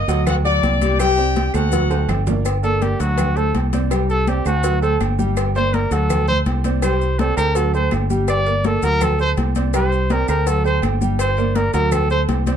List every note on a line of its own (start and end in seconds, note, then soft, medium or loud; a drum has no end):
0.00 0.23 D#5 loud
0.00 0.23 D#6 medium
0.08 0.59 D2 loud
0.08 0.38 F#3 loud
0.08 0.38 F#4 loud
0.08 0.39 F#5 loud
0.08 cowbell medium
0.08 high conga soft
0.08 maracas medium
0.26 0.36 F#4 medium
0.26 0.35 F#5 loud
0.26 cowbell loud
0.26 high conga soft
0.26 low conga medium
0.26 low agogo loud
0.26 claves medium
0.26 maracas medium
0.44 0.75 F#3 loud
0.44 0.75 F#4 loud
0.44 0.95 D5 loud
0.44 0.75 F#5 loud
0.44 0.96 D6 medium
0.44 maracas soft
0.63 1.48 C2 loud
0.63 cowbell medium
0.63 high conga medium
0.63 low agogo medium
0.63 maracas soft
0.81 0.96 G3 medium
0.81 0.97 G4 loud
0.81 0.97 G5 medium
0.81 cowbell medium
0.81 high conga medium
0.81 low agogo medium
0.81 maracas medium
0.98 1.14 G3 medium
0.98 1.15 G4 loud
0.98 1.51 G4 loud
0.98 1.50 G5 loud
0.98 1.15 G5 medium
0.98 cowbell loud
0.98 high conga soft
0.98 low agogo loud
0.98 claves medium
0.98 maracas loud
1.17 1.47 C4 medium
1.17 1.48 C5 medium
1.17 1.48 D5 medium
1.17 high conga soft
1.17 maracas soft
1.36 cowbell medium
1.36 high conga loud
1.36 low agogo medium
1.36 maracas soft
1.54 2.05 D2 loud
1.54 1.69 A3 medium
1.54 2.09 F#4 medium
1.54 1.69 A4 medium
1.54 1.69 C5 medium
1.54 2.09 F#5 loud
1.54 high conga medium
1.54 low agogo loud
1.54 claves medium
1.54 maracas medium
1.72 1.87 F#3 medium
1.72 1.87 F#4 medium
1.72 1.87 F#5 medium
1.72 cowbell loud
1.72 low conga medium
1.72 maracas loud
1.90 2.20 A3 medium
1.90 2.20 A4 medium
1.90 2.20 C5 medium
1.90 high timbale loud
1.90 low agogo medium
1.90 maracas soft
2.09 2.94 G1 medium
2.09 cowbell medium
2.09 low conga medium
2.09 low timbale medium
2.09 low agogo loud
2.09 claves medium
2.09 maracas soft
2.27 2.42 A#3 medium
2.27 2.42 A#4 medium
2.27 2.42 D5 medium
2.27 low conga medium
2.27 low timbale loud
2.27 maracas medium
2.45 cowbell loud
2.45 high conga soft
2.45 low agogo loud
2.45 claves medium
2.45 maracas medium
2.63 2.78 A#3 medium
2.63 2.84 A4 medium
2.63 2.78 A#4 medium
2.63 2.78 D5 medium
2.63 high conga soft
2.63 low agogo medium
2.63 maracas soft
2.81 2.96 A#3 medium
2.81 3.02 G4 medium
2.81 2.96 A#4 medium
2.81 2.96 D5 medium
2.81 cowbell medium
2.81 high conga loud
2.81 maracas soft
2.99 3.51 D2 medium
2.99 3.29 F#3 loud
2.99 3.29 F#4 medium
2.99 3.38 F#4 medium
2.99 3.30 F#5 medium
2.99 cowbell medium
2.99 high conga soft
2.99 maracas medium
3.18 cowbell loud
3.18 high conga soft
3.18 low conga medium
3.18 low agogo loud
3.18 claves medium
3.18 maracas medium
3.36 3.66 A3 medium
3.36 3.66 A4 medium
3.36 3.55 A4 medium
3.36 3.66 C5 medium
3.36 maracas soft
3.54 4.40 C2 medium
3.54 cowbell medium
3.54 high conga medium
3.54 low agogo medium
3.54 maracas soft
3.73 3.88 C4 medium
3.73 3.88 C5 medium
3.73 3.88 D5 medium
3.73 cowbell medium
3.73 high conga medium
3.73 low agogo medium
3.73 maracas medium
3.91 4.21 G3 medium
3.91 4.21 G4 medium
3.91 4.21 G5 medium
3.91 cowbell loud
3.91 low agogo loud
3.91 claves medium
3.91 maracas medium
4.09 4.30 A4 medium
4.09 high conga soft
4.09 maracas soft
4.27 4.42 C4 medium
4.27 4.46 G4 medium
4.27 4.43 C5 medium
4.27 4.43 D5 medium
4.27 cowbell medium
4.27 high conga loud
4.27 low agogo medium
4.27 maracas soft
4.45 4.96 D2 loud
4.45 4.60 A3 medium
4.45 4.80 F#4 medium
4.45 4.61 A4 medium
4.45 4.61 C5 medium
4.45 high conga soft
4.45 low agogo loud
4.45 claves medium
4.45 maracas medium
4.63 4.79 F#3 medium
4.63 4.79 F#4 medium
4.63 4.79 F#5 medium
4.63 cowbell loud
4.63 high conga soft
4.63 maracas medium
4.82 5.12 A3 medium
4.82 4.99 A4 medium
4.82 5.12 A4 medium
4.82 5.13 C5 medium
4.82 high conga soft
4.82 low agogo medium
4.82 maracas soft
5.00 5.86 G1 medium
5.00 cowbell medium
5.00 high conga medium
5.00 low agogo loud
5.00 claves medium
5.00 maracas soft
5.19 5.48 G3 medium
5.19 5.49 G4 medium
5.19 5.49 G5 medium
5.19 high conga medium
5.19 maracas medium
5.37 cowbell loud
5.37 high conga soft
5.37 low agogo loud
5.37 claves medium
5.37 maracas medium
5.55 5.70 A#3 medium
5.55 5.71 A#4 medium
5.55 5.75 C5 loud
5.55 5.71 D5 medium
5.55 high conga soft
5.55 low agogo medium
5.55 maracas soft
5.73 5.88 A#3 medium
5.73 5.94 A#4 medium
5.73 5.89 A#4 medium
5.73 5.89 D5 medium
5.73 cowbell medium
5.73 high conga medium
5.73 maracas soft
5.91 6.42 D2 loud
5.91 6.21 F#3 loud
5.91 6.22 F#4 loud
5.91 6.27 A4 medium
5.91 6.22 F#5 medium
5.91 cowbell medium
5.91 high conga soft
5.91 maracas medium
6.10 cowbell loud
6.10 high conga soft
6.10 low conga medium
6.10 low agogo loud
6.10 claves medium
6.10 maracas medium
6.28 6.58 A3 medium
6.28 6.58 A4 medium
6.28 6.39 C5 loud
6.28 6.58 C5 medium
6.28 high conga soft
6.28 low conga medium
6.28 maracas soft
6.46 7.31 C2 medium
6.46 cowbell medium
6.46 high conga medium
6.46 low agogo medium
6.46 maracas soft
6.64 6.80 C4 medium
6.64 6.80 C5 medium
6.64 6.80 D5 medium
6.64 cowbell medium
6.64 high conga medium
6.64 low agogo medium
6.64 maracas medium
6.82 7.13 G3 medium
6.82 7.13 G4 medium
6.82 7.21 C5 medium
6.82 7.13 G5 medium
6.82 cowbell loud
6.82 low agogo loud
6.82 claves medium
6.82 maracas medium
7.01 high conga soft
7.01 maracas soft
7.19 7.34 C4 medium
7.19 7.36 A4 medium
7.19 7.34 C5 medium
7.19 7.34 D5 medium
7.19 cowbell medium
7.19 high conga loud
7.19 low agogo medium
7.19 maracas soft
7.37 7.88 D2 medium
7.37 7.52 A3 medium
7.37 7.52 A4 medium
7.37 7.57 A#4 loud
7.37 7.52 C5 medium
7.37 high conga soft
7.37 low agogo loud
7.37 claves medium
7.37 maracas medium
7.55 7.70 F#3 medium
7.55 7.70 F#4 medium
7.55 7.74 A4 medium
7.55 7.70 F#5 medium
7.55 cowbell loud
7.55 high conga soft
7.55 maracas loud
7.74 8.04 A3 medium
7.74 8.04 A4 medium
7.74 7.91 C5 medium
7.74 8.04 C5 medium
7.74 high conga soft
7.74 low agogo medium
7.74 maracas soft
7.91 8.77 G1 medium
7.91 cowbell medium
7.91 high conga medium
7.91 low timbale medium
7.91 low agogo loud
7.91 claves medium
7.91 maracas soft
8.10 8.40 G3 medium
8.10 8.40 G4 medium
8.10 8.40 G5 medium
8.10 high conga medium
8.10 maracas medium
8.28 8.67 D5 loud
8.28 cowbell loud
8.28 low agogo loud
8.28 claves medium
8.28 maracas medium
8.46 8.61 A#3 medium
8.46 8.61 A#4 medium
8.46 8.62 D5 medium
8.46 high conga soft
8.46 low agogo medium
8.46 maracas soft
8.64 8.80 A#3 medium
8.64 8.85 A4 medium
8.64 8.80 A#4 medium
8.64 8.80 D5 medium
8.64 cowbell medium
8.64 high conga loud
8.64 maracas soft
8.82 9.33 D2 medium
8.82 9.13 F#3 medium
8.82 9.13 F#4 loud
8.82 9.05 A#4 loud
8.82 9.13 F#5 medium
8.82 cowbell medium
8.82 high conga soft
8.82 maracas medium
9.01 9.20 A4 medium
9.01 cowbell loud
9.01 high conga soft
9.01 low conga medium
9.01 low agogo medium
9.01 claves medium
9.01 maracas medium
9.19 9.49 A3 medium
9.19 9.49 A4 medium
9.19 9.50 C5 medium
9.19 9.31 C5 loud
9.19 high conga soft
9.19 maracas soft
9.37 10.23 C2 medium
9.37 cowbell medium
9.37 high conga medium
9.37 low agogo medium
9.37 maracas soft
9.55 9.71 C4 medium
9.55 9.71 C5 medium
9.55 9.71 D5 medium
9.55 cowbell medium
9.55 high conga medium
9.55 low agogo medium
9.55 maracas medium
9.74 10.04 G3 medium
9.74 10.04 G4 medium
9.74 10.13 C5 medium
9.74 10.04 G5 medium
9.74 cowbell loud
9.74 low agogo loud
9.74 claves medium
9.74 maracas medium
9.92 high conga soft
9.92 maracas soft
10.10 10.25 C4 medium
10.10 10.29 A#4 medium
10.10 10.25 C5 medium
10.10 10.26 D5 medium
10.10 cowbell medium
10.10 high conga loud
10.10 low agogo medium
10.10 maracas soft
10.28 10.79 D2 loud
10.28 10.43 A3 medium
10.28 10.43 A4 medium
10.28 10.49 A#4 medium
10.28 10.44 C5 medium
10.28 high conga soft
10.28 low agogo loud
10.28 claves medium
10.28 maracas medium
10.46 10.61 F#3 medium
10.46 10.62 F#4 medium
10.46 10.65 A4 medium
10.46 10.62 F#5 medium
10.46 cowbell loud
10.46 high conga soft
10.46 maracas medium
10.64 10.95 A3 medium
10.64 10.95 A4 medium
10.64 10.95 C5 medium
10.64 10.82 C5 loud
10.64 high conga soft
10.64 low agogo medium
10.64 maracas soft
10.82 11.68 G1 medium
10.82 cowbell medium
10.82 high conga medium
10.82 low agogo loud
10.82 claves medium
10.82 maracas soft
11.01 11.31 G3 medium
11.01 11.31 G4 medium
11.01 11.31 G5 medium
11.01 high conga medium
11.01 maracas medium
11.19 11.58 C5 medium
11.19 cowbell loud
11.19 low agogo loud
11.19 claves medium
11.19 maracas medium
11.37 11.53 A#3 medium
11.37 11.53 A#4 medium
11.37 11.53 D5 medium
11.37 high conga soft
11.37 low agogo medium
11.37 maracas soft
11.55 11.71 A#3 medium
11.55 11.73 A#4 medium
11.55 11.71 A#4 medium
11.55 11.71 D5 medium
11.55 cowbell medium
11.55 high conga medium
11.55 maracas soft
11.73 12.25 D2 loud
11.73 12.04 F#3 loud
11.73 12.04 F#4 loud
11.73 11.94 A#4 loud
11.73 12.04 F#5 loud
11.73 cowbell medium
11.73 high conga soft
11.73 maracas medium
11.92 12.10 A4 medium
11.92 cowbell loud
11.92 high conga soft
11.92 low conga medium
11.92 low agogo loud
11.92 claves medium
11.92 maracas medium
12.10 12.40 A3 medium
12.10 12.41 A4 medium
12.10 12.22 C5 loud
12.10 12.41 C5 medium
12.10 high conga soft
12.10 maracas soft
12.28 12.57 C2 medium
12.28 cowbell medium
12.28 high conga medium
12.28 low agogo medium
12.28 maracas soft
12.47 12.57 C4 medium
12.47 12.57 C5 medium
12.47 12.57 D5 medium
12.47 cowbell medium
12.47 high conga medium
12.47 low agogo medium
12.47 maracas medium